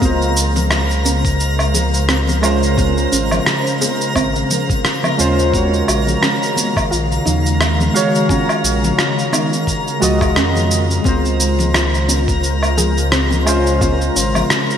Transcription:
Already playing: C#3 A#4 F5 A#5
0.00 C#2 G#3 C4 F4 C5, kick, high conga, shaker
0.05 C5
0.22 shaker
0.37 shaker
0.56 high conga, low conga, shaker
0.71 F4, cross-stick, low woodblock, shaker
0.91 shaker
1.05 C#4, high conga, shaker
1.25 kick, shaker
1.40 shaker
1.59 low woodblock, shaker
1.74 G#4, high conga, low conga, shaker
1.94 shaker
2.09 C4, cross-stick, shaker
2.27 high conga, low conga, shaker
2.42 G#3 C#4 F4 C5, low woodblock, shaker
2.63 shaker
2.74 G#3 C#4 F4, kick, high conga, shaker
2.79 F4 C5
2.97 shaker
3.12 G#1 C#4, shaker
3.31 high conga, low conga, low woodblock, shaker
3.46 cross-stick, shaker
3.67 shaker
3.81 G#4, high conga, shaker
4.01 shaker
4.15 G#1 C4, kick, low woodblock, shaker
4.35 shaker
4.50 high conga, low conga, shaker
4.70 kick, shaker
4.84 F4, cross-stick, shaker
5.03 high conga, low conga, low woodblock, shaker
5.17 D#2 G#3 C#4 F4 C5, shaker
5.39 shaker
5.50 D#3 G#3 F4 F5, kick, high conga, shaker
5.55 F#4 C#5
5.74 shaker
5.88 A#1 F#4, low woodblock, shaker
6.07 high conga, low conga, shaker
6.22 C#4, cross-stick, shaker
6.43 shaker
6.57 high conga, shaker
6.76 kick, low woodblock, shaker
6.91 A#1 F4, shaker
7.12 shaker
7.26 D#2 D#4, high conga, low conga, shaker
7.46 shaker
7.61 cross-stick, low woodblock, shaker
7.80 high conga, low conga, shaker
7.93 G#3 F#4 C#5 F5, shaker
8.15 shaker
8.26 G#3 C#4 F4, kick, high conga, shaker
8.31 F#4 C#5
8.49 low woodblock, shaker
8.64 A#1, shaker
8.84 high conga, low conga, shaker
8.98 F4, cross-stick, shaker
9.19 shaker
9.33 D#4, high conga, low woodblock, shaker
9.53 shaker
9.67 kick, shaker
9.87 shaker
10.00 C#2 G#3 F4 F#4 D#5, high conga, low conga, shaker
10.21 kick, low woodblock, shaker
10.36 F2 C#4, cross-stick, shaker
10.55 high conga, low conga, shaker
10.71 shaker
10.91 shaker
11.02 C#2 C#3 G#3 C4 F4 A#4 C5 A#5, kick, high conga, shaker
11.06 F4 C5
11.25 shaker
11.40 shaker
11.59 high conga, low conga, shaker
11.74 F4, cross-stick, low woodblock, shaker
11.94 shaker
12.09 C#4, high conga, shaker
12.28 kick, shaker
12.44 shaker
12.63 low woodblock, shaker
12.77 G#4, high conga, low conga, shaker
12.97 shaker
13.12 C4, cross-stick, shaker
13.31 high conga, low conga, shaker
13.45 G#3 C#4 F4 C5, low woodblock, shaker
13.67 shaker
13.78 G#3 C#4 F4, kick, high conga, shaker
13.82 F4 C5
14.01 shaker
14.16 G#1 C#4, shaker
14.35 high conga, low conga, low woodblock, shaker
14.50 cross-stick, shaker
14.70 shaker

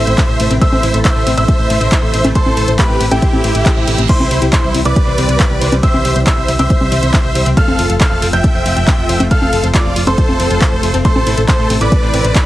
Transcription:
Already playing: C3 E3 A3 E4 C5 E5 E6
0.07 A1 E4, closed hi-hat
0.18 A4, kick, clap, closed hi-hat
0.29 A1 C5
0.40 A1 A3, open hi-hat, ride
0.51 A1 C4, closed hi-hat
0.61 A3 C5 E5 E6, kick, closed hi-hat
0.72 A1 C4, high conga
0.83 A1 E4, open hi-hat, ride
0.94 A1 A4, closed hi-hat
1.05 C5 E5 E6, kick, clap, closed hi-hat
1.16 A1 A3
1.27 A1 C4, open hi-hat, ride
1.37 A1 E4 C5 E5 E6, closed hi-hat
1.48 A4, kick, closed hi-hat
1.59 A1 C5
1.70 A1 A3, open hi-hat, ride
1.81 A1 C4, closed hi-hat
1.92 E4, kick, clap, closed hi-hat
2.03 A1 A4
2.14 A1 C5, open hi-hat, ride
2.24 A1 A3, closed hi-hat, high conga
2.35 A4 C5 C6, kick, closed hi-hat
2.46 A1 E4, high conga
2.57 A1 A4, open hi-hat, ride
2.68 A1 C5, closed hi-hat
2.79 A3 G4 B4 B5, kick, clap, closed hi-hat
2.90 A1 C4
3.01 A1 E4, open hi-hat, ride
3.11 A1 E4 G4 A4 G5, closed hi-hat, high conga
3.22 C5, kick, closed hi-hat, reverse cymbal
3.33 A1 A3, high conga
3.44 A1 C4, open hi-hat, ride
3.55 A1 E4, closed hi-hat
3.66 A4, kick, clap, closed hi-hat
3.77 A1 C5
3.87 A1 A3, open hi-hat, ride
3.98 A1 C4, closed hi-hat
4.09 C3 E3 G3 E4 C5 C6, kick, closed hi-hat, crash
4.20 C2 C4, high conga
4.31 C2 E4, open hi-hat, ride
4.42 C2 G4, closed hi-hat
4.53 E4 C5 C6, kick, clap, closed hi-hat
4.64 C2 G3
4.74 C2 C4, open hi-hat, ride
4.85 C2 E4 B4 D5 D6, closed hi-hat
4.96 G4, kick, closed hi-hat
5.07 C2 C5
5.18 C2 C4, open hi-hat, ride
5.29 C2 C4, closed hi-hat
5.40 E4, kick, clap, closed hi-hat
5.51 C2 G4
5.61 C2 C5, open hi-hat, ride
5.72 C2 G3, closed hi-hat, high conga
5.83 G4 C5 E5 E6, kick, closed hi-hat
5.94 C2 E4, high conga
6.05 C2 G4, open hi-hat, ride
6.16 C2 C5, closed hi-hat
6.27 G3 C5 E5 E6, kick, clap, closed hi-hat
6.38 C2 C4
6.48 C2 E4, open hi-hat, ride
6.59 C2 G4 C5 E5 E6, closed hi-hat, high conga
6.70 C5, kick, closed hi-hat
6.81 C2 G3, high conga
6.92 C2 C4, open hi-hat, ride
7.03 C2 E4, closed hi-hat
7.14 G4, kick, clap, closed hi-hat
7.24 C2 C5
7.35 C2 G3, open hi-hat, ride
7.46 C2 C4, closed hi-hat
7.57 C3 F3 A3 F4 A4 F5 F6, kick, closed hi-hat
7.68 F1 C4, high conga
7.79 F1 F4, open hi-hat, ride
7.90 F1 A4, closed hi-hat
8.01 A4 C5 F5 F6, kick, clap, closed hi-hat
8.11 F1 A3
8.22 F1 C4, open hi-hat, ride
8.33 F1 F4 E5 G5 G6, closed hi-hat
8.44 A4, kick, closed hi-hat
8.55 F1 C5
8.66 F1 C4, open hi-hat, ride
8.77 F1 C4, closed hi-hat
8.87 F4, kick, clap, closed hi-hat
8.98 F1 A4
9.09 F1 C5, open hi-hat, ride
9.20 F1 A3, closed hi-hat, high conga
9.31 A4 F5 F6, kick, closed hi-hat
9.42 F1 F4, high conga
9.53 F1 A4, open hi-hat, ride
9.64 F1 C5, closed hi-hat
9.74 A3 F4 D5 D6, kick, clap, closed hi-hat
9.85 F1 C4
9.96 F1 F4, open hi-hat, ride
10.07 F1 A4 C5 C6, closed hi-hat, high conga
10.18 C5, kick, closed hi-hat
10.29 F1 A3, high conga
10.40 F1 C4, open hi-hat, ride
10.50 F1 F4, closed hi-hat
10.61 A4, kick, clap, closed hi-hat
10.72 F1 C5
10.83 F1 A3, open hi-hat, ride
10.94 F1 C4, closed hi-hat
11.05 E3 A3 E4 A4 C5 C6, kick, closed hi-hat
11.16 A1 C4, high conga
11.27 A1 E4, open hi-hat, ride
11.37 A1 A4, closed hi-hat
11.48 A4 C5 C6, kick, clap, closed hi-hat
11.59 A1 A3
11.70 A1 C4, open hi-hat, ride
11.81 A1 E4 B4 D5 D6, closed hi-hat
11.92 A4, kick, closed hi-hat
12.03 A1 C5
12.14 A1 C4, open hi-hat, ride
12.24 A1 C4, closed hi-hat
12.35 E4, kick, clap, closed hi-hat

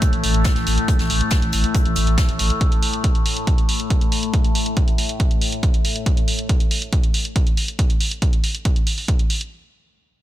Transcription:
Already playing: A2 A3
0.02 kick, closed hi-hat
0.13 A1, closed hi-hat
0.24 A1, closed hi-hat, open hi-hat
0.34 A1, closed hi-hat
0.44 kick, snare, closed hi-hat
0.55 A1, snare, closed hi-hat
0.67 A1, closed hi-hat, open hi-hat
0.78 closed hi-hat
0.88 kick, closed hi-hat
0.99 A1, snare, closed hi-hat
1.10 A1, closed hi-hat, open hi-hat
1.21 closed hi-hat
1.30 kick, snare, closed hi-hat
1.42 A1, closed hi-hat
1.52 A1, closed hi-hat, open hi-hat
1.64 closed hi-hat
1.75 kick, closed hi-hat
1.86 A1, closed hi-hat
1.95 A1, closed hi-hat, open hi-hat
2.07 A1, closed hi-hat
2.18 kick, snare, closed hi-hat
2.29 A1, closed hi-hat
2.39 A1, closed hi-hat, open hi-hat
2.50 closed hi-hat
2.61 kick, closed hi-hat
2.72 closed hi-hat
2.83 open hi-hat
2.93 closed hi-hat
3.04 kick, closed hi-hat
3.15 closed hi-hat
3.26 open hi-hat
3.37 closed hi-hat
3.47 kick, closed hi-hat
3.58 closed hi-hat
3.69 open hi-hat
3.80 closed hi-hat
3.90 kick, closed hi-hat
4.01 closed hi-hat
4.12 open hi-hat
4.23 closed hi-hat
4.34 kick, closed hi-hat
4.44 closed hi-hat
4.55 open hi-hat
4.66 closed hi-hat
4.77 kick, closed hi-hat
4.88 closed hi-hat
4.98 open hi-hat
5.09 closed hi-hat
5.20 kick, closed hi-hat
5.31 closed hi-hat
5.41 open hi-hat
5.52 closed hi-hat
5.63 kick, closed hi-hat
5.74 closed hi-hat
5.85 open hi-hat
5.96 closed hi-hat
6.06 kick, closed hi-hat
6.17 closed hi-hat
6.28 open hi-hat
6.39 closed hi-hat
6.49 kick, closed hi-hat
6.60 closed hi-hat
6.71 open hi-hat
6.82 closed hi-hat
6.93 kick, closed hi-hat
7.04 closed hi-hat
7.14 open hi-hat
7.25 closed hi-hat
7.36 kick, closed hi-hat
7.47 closed hi-hat
7.57 open hi-hat
7.68 closed hi-hat
7.79 kick, closed hi-hat
7.90 closed hi-hat
8.00 open hi-hat
8.11 closed hi-hat
8.22 kick, closed hi-hat
8.33 closed hi-hat
8.44 open hi-hat
8.55 closed hi-hat
8.65 kick, closed hi-hat
8.76 closed hi-hat
8.87 open hi-hat
8.98 open hi-hat
9.08 kick, closed hi-hat
9.19 closed hi-hat
9.30 open hi-hat
9.41 closed hi-hat

